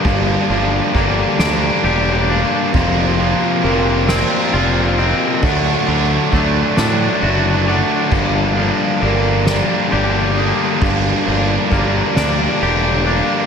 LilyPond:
<<
  \new Staff \with { instrumentName = "Vibraphone" } { \time 6/8 \key g \minor \tempo 4. = 45 f''4 d''8 r4 f''8 | f''4 bes'8 d''4 r8 | fis''4 d''8 d''4 fis''8 | f''4 bes'8 d''4 ees'''8 |
f''4 d''8 d''4 f''8 | }
  \new Staff \with { instrumentName = "Clean electric guitar" } { \time 6/8 \key g \minor <g, bes g'>8 f8 bes8 d'8 g'8 d'8 | f,8 f8 bes8 c'8 f'8 c'8 | d8 d8 a8 d'8 fis'8 d'8 | g,8 f8 bes4 g'4 |
g,8 f8 bes8 d'8 g'8 d'8 | }
  \new Staff \with { instrumentName = "Distorted electric guitar" } { \time 6/8 \key g \minor <g, d g bes d'>8 <g bes d'>8 <d g bes d'>8 <g bes d'>8 <d g bes d'>8 <g bes d'>8 | <f, c f bes c'>8 <f bes c'>8 <c f bes c'>8 <f bes c'>8 <c f bes c'>8 <f bes c'>8 | <d fis a d'>8 <fis a d'>8 <d fis a d'>8 <fis a d'>8 <d fis a d'>8 <fis a d'>8 | <g, d g bes d'>8 <g bes d'>8 <d g bes d'>8 <g bes d'>8 <d g bes d'>8 <g bes d'>8 |
<g, d g bes d'>8 <g bes d'>8 <d g bes d'>8 <g bes d'>8 <d g bes d'>8 <g bes d'>8 | }
  \new Staff \with { instrumentName = "Distorted electric guitar" } { \time 6/8 \key g \minor <g, d g bes d'>8 <g bes d'>8 <d g bes d'>8 <g bes d'>8 <d g bes d'>8 <g bes d'>8 | <f, c f bes c'>8 <f bes c'>8 <c f bes c'>8 <f bes c'>8 <c f bes c'>8 <f bes c'>8 | <d fis a d'>8 <fis a d'>8 <d fis a d'>8 <fis a d'>8 <d fis a d'>8 <fis a d'>8 | <g, d g bes d'>8 <g bes d'>8 <d g bes d'>8 <g bes d'>8 <d g bes d'>8 <g bes d'>8 |
<g, d g bes d'>8 <g bes d'>8 <d g bes d'>8 <g bes d'>8 <d g bes d'>8 <g bes d'>8 | }
  \new Staff \with { instrumentName = "Fingered electric bass" } { \clef bass \time 6/8 \key g \minor g,,8 g,,8 g,,8 d,8 e,,4 | f,,4 f,,4 f,,4 | d,8 d,8 d,8 a,8 fis,,4 | g,,4 g,,4 g,,4 |
g,,8 g,,8 g,,8 d,8 e,,4 | }
  \new DrumStaff \with { instrumentName = "Drums" } \drummode { \time 6/8 <bd cymr>8 cymr8 <bd cymr>8 <cymr sn>8 cymr8 cymr8 | <bd cymr>8 cymr8 cymr8 <cymr sn>8 cymr8 cymr8 | <bd cymr>8 cymr8 <bd cymr>8 <cymr sn>8 cymr8 cymr8 | <cymc bd>8 cymr8 cymr8 <cymr sn>8 cymr8 cymr8 |
<bd cymr>8 cymr8 <bd cymr>8 <cymr sn>8 cymr8 cymr8 | }
>>